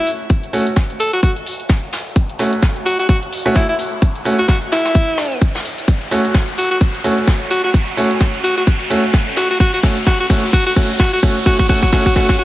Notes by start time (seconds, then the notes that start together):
Already playing: riser
0.07 open hi-hat, shaker
0.29 kick, closed hi-hat, shaker
0.43 closed hi-hat
0.53 A3 C#4 F#4, open hi-hat, shaker
0.66 closed hi-hat
0.76 kick, snare, closed hi-hat, shaker
0.90 closed hi-hat
0.99 A4, open hi-hat, shaker
1.13 F#4, closed hi-hat
1.23 F#4, kick, closed hi-hat, shaker
1.36 closed hi-hat
1.46 open hi-hat, shaker
1.60 closed hi-hat
1.69 kick, snare, closed hi-hat, shaker
1.93 snare, open hi-hat, shaker
2.16 kick, closed hi-hat, shaker
2.29 closed hi-hat
2.39 A3 C#4 F#4, snare, open hi-hat, shaker
2.53 closed hi-hat
2.62 kick, snare, closed hi-hat, shaker
2.76 closed hi-hat
2.86 F#4, open hi-hat, shaker
2.99 F#4, snare, closed hi-hat
3.08 F#4, kick, closed hi-hat, shaker
3.23 closed hi-hat
3.33 open hi-hat, shaker
3.46 A3 C#4 F#4, closed hi-hat
3.55 E4, kick, snare, closed hi-hat, shaker
3.69 E4
3.79 open hi-hat, shaker
4.02 kick, closed hi-hat, shaker
4.15 closed hi-hat
4.25 A3 C#4 F#4, open hi-hat, shaker
4.38 F#4, closed hi-hat
4.48 F#4, kick, snare, closed hi-hat, shaker
4.62 closed hi-hat
4.72 E4, snare, open hi-hat, shaker
4.85 snare, closed hi-hat, shaker
4.95 kick, closed hi-hat, shaker
5.09 closed hi-hat
5.17 snare, open hi-hat, shaker
5.32 closed hi-hat
5.41 kick, closed hi-hat, shaker
5.54 snare, shaker
5.65 open hi-hat
5.78 closed hi-hat, shaker
5.88 kick, closed hi-hat, shaker
6.01 closed hi-hat
6.11 A3 C#4 F#4, snare, open hi-hat, shaker
6.25 closed hi-hat
6.34 kick, snare, closed hi-hat, shaker
6.48 closed hi-hat
6.58 F#4, open hi-hat, shaker
6.71 F#4, snare, closed hi-hat
6.81 kick, closed hi-hat, shaker
6.94 closed hi-hat
7.04 A3 C#4 F#4, open hi-hat, shaker
7.18 closed hi-hat
7.27 kick, snare, closed hi-hat, shaker
7.50 F#4, open hi-hat, shaker
7.64 F#4
7.74 kick, closed hi-hat, shaker
7.87 closed hi-hat
7.97 A3 C#4 F#4, open hi-hat, shaker
8.11 closed hi-hat
8.20 kick, snare, closed hi-hat, shaker
8.34 closed hi-hat
8.44 F#4, open hi-hat, shaker
8.57 F#4, closed hi-hat
8.67 kick, closed hi-hat, shaker
8.80 closed hi-hat
8.90 A3 C#4 F#4, open hi-hat, shaker
9.04 closed hi-hat
9.13 kick, snare, closed hi-hat, shaker
9.36 F#4, snare, open hi-hat, shaker
9.50 F#4
9.60 F#4, kick, closed hi-hat, shaker
9.73 F#4, closed hi-hat
9.83 A3 C#4 F#4, kick, snare, open hi-hat, shaker
9.97 closed hi-hat
10.06 F#4, kick, snare, closed hi-hat, shaker
10.20 F#4, closed hi-hat
10.30 A3 C#4 F#4, kick, open hi-hat, shaker
10.43 snare, closed hi-hat
10.53 F#4, kick, closed hi-hat, shaker
10.66 F#4, closed hi-hat
10.76 A3 C#4 F#4, kick, open hi-hat, shaker
10.90 closed hi-hat
11.00 F#4, kick, snare, closed hi-hat, shaker
11.13 F#4
11.23 A3 C#4 F#4, kick, open hi-hat, shaker
11.46 A3 C#4 F#4, kick, closed hi-hat, shaker
11.59 F#4, kick, closed hi-hat
11.69 A3 C#4 F#4, kick, open hi-hat, shaker
11.82 F#4, kick, closed hi-hat
11.92 A3 C#4 F#4, kick, snare, closed hi-hat, shaker
12.06 F#4, kick, open hi-hat
12.16 A3 C#4 F#4, kick, snare, open hi-hat, shaker
12.29 F#4, kick, snare, closed hi-hat, shaker
12.39 F#4